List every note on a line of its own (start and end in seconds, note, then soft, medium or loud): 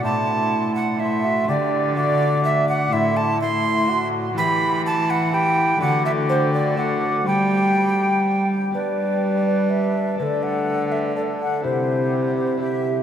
0.00 1.50 A2 medium
0.00 0.95 A3 soft
0.00 0.97 E4 soft
0.00 0.98 C5 soft
0.00 0.75 A5 medium
0.00 0.98 C6 medium
0.04 0.98 E4 medium
0.75 1.01 F#5 medium
0.97 1.43 A3 medium
0.97 1.49 E4 medium
0.97 1.50 C5 medium
0.97 1.48 E5 medium
0.97 1.51 C6 medium
1.01 1.26 E4 medium
1.25 1.48 F#4 medium
1.44 2.92 D3 medium
1.44 1.91 A3 medium
1.44 1.97 G4 soft
1.44 1.94 A4 soft
1.49 1.98 G4 medium
1.49 1.96 D5 medium
1.49 1.96 D6 medium
1.93 2.87 A3 soft
1.93 2.93 F#4 medium
1.93 2.89 A4 medium
1.93 2.43 D5 loud
1.97 2.92 F#4 medium
1.97 2.94 D6 medium
2.45 2.68 E5 medium
2.69 2.94 F#5 medium
2.88 4.39 A2 medium
2.88 3.35 A3 medium
2.88 3.36 E4 medium
2.88 3.38 A4 soft
2.92 4.34 A2 medium
2.92 3.40 E4 medium
2.92 3.18 E5 loud
2.92 3.40 C6 medium
3.17 3.40 A5 medium
3.36 4.37 A3 medium
3.36 4.33 E4 medium
3.36 4.38 A4 medium
3.40 3.90 E4 medium
3.40 4.07 C6 medium
3.40 4.08 C6 loud
3.89 4.39 F#4 medium
4.35 5.78 E3 medium
4.35 5.83 E3 medium
4.35 5.30 E4 medium
4.35 5.05 G4 medium
4.35 5.31 B4 medium
4.35 5.29 B5 medium
4.35 4.82 B5 loud
4.86 5.12 A5 loud
5.10 5.36 F#5 loud
5.31 5.82 E4 medium
5.31 5.78 G4 medium
5.31 5.83 B4 medium
5.31 5.81 G5 loud
5.31 5.83 B5 medium
5.78 7.24 D3 medium
5.78 7.29 D3 medium
5.78 6.73 A3 medium
5.78 6.76 F#4 medium
5.78 6.75 A4 medium
5.78 6.76 D5 medium
5.78 6.05 F#5 loud
5.78 6.77 D6 medium
6.05 6.11 E5 loud
6.29 6.53 C5 loud
6.54 6.77 D5 medium
6.74 7.27 A3 medium
6.74 7.29 F#4 medium
6.74 7.28 A4 medium
6.74 7.25 D5 medium
6.74 7.26 F#5 medium
6.74 7.28 D6 medium
7.24 8.51 G3 medium
7.24 8.73 G3 medium
7.24 8.69 B3 soft
7.24 8.71 G4 soft
7.24 8.50 G4 medium
7.24 8.72 D5 soft
7.24 8.47 G5 loud
7.24 8.26 B5 medium
8.50 8.72 G5 medium
8.71 10.20 G3 medium
8.71 10.22 G3 soft
8.71 10.20 B3 soft
8.71 10.20 G4 soft
8.71 10.15 B4 medium
8.71 10.17 D5 soft
8.71 9.45 D5 medium
8.75 10.16 D4 medium
9.46 9.72 D5 medium
9.70 10.18 E5 medium
10.15 11.66 D3 medium
10.15 11.66 D3 soft
10.15 11.64 A3 soft
10.15 11.65 A4 soft
10.15 11.65 D5 soft
10.15 10.44 D5 medium
10.20 11.14 D4 medium
10.20 11.14 A4 medium
10.20 10.24 B4 medium
10.43 10.93 F#5 medium
10.92 11.15 E5 medium
11.16 11.66 D4 medium
11.16 11.65 A4 medium
11.16 11.22 D5 medium
11.40 11.64 F#5 medium
11.61 13.03 C3 medium
11.61 12.56 C4 soft
11.61 12.57 E4 soft
11.61 12.61 E4 medium
11.61 12.59 G4 soft
11.61 12.60 G4 medium
11.61 12.35 C5 medium
12.36 12.59 C5 medium
12.57 13.03 C4 medium
12.57 13.03 E4 medium
12.57 13.03 G4 medium
12.57 13.03 E5 medium